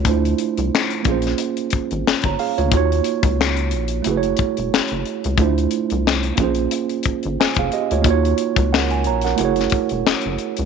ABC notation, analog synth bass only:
X:1
M:4/4
L:1/16
Q:"Swing 16ths" 1/4=90
K:Bbphr
V:1 name="Analog synth bass" clef=bass
=D,,2 z =C,, z2 B,,,2 z2 A,,, A,,, =G,,, G,,, z D,, | E,,2 z D,,3 B,,,2 G,,,2 _F,,, F,,, G,,, G,,, z D,, | =D,,2 z =C,,3 B,,,2 z2 =G,,, G,,, F,,, F,,, z D,, | E,,2 z D,,3 B,,,2 G,,,2 _F,,, F,,, G,,, G,,, z D,, |]